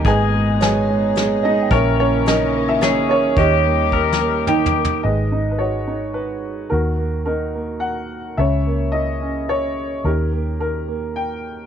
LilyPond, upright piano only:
<<
  \new Staff \with { instrumentName = "Upright piano" } { \time 3/4 \key dis \phrygian \tempo 4 = 108 << { gis''4 gis''4. dis''8 | cis''8 cis''8 dis''8. e''16 cis''8 cis''8 | dis''2 g''4 | \key gis \minor dis''8.~ dis''32 b'32 cis''4 b'4 |
ais'4 ais'4 fis''4 | e''4 dis''4 cis''4 | ais'4 ais'4 g''4 | } \\ { <gis' b' dis''>4 <gis' b'>4. dis'8 | <cis' e' ais'>8 cis'8 <dis' ais'>8. e'16 cis'8 cis'8 | <dis' g' ais'>2 r4 | b'4. r4. |
fis'4. r4. | cis''4. r4. | g'4. r4. | } >> }
  \new Staff \with { instrumentName = "Upright piano" } { \time 3/4 \key dis \phrygian gis8 gis8 gis8 gis8 gis8 gis8 | ais8 ais8 ais8 ais8 ais8 ais8 | dis8 ais8 dis8 ais8 dis8 ais8 | \key gis \minor gis8 dis'8 fis'8 dis'4. |
dis8 ais8 dis'8 ais4. | cis8 ais8 e'8 cis'4. | dis8 ais8 dis8 ais4. | }
>>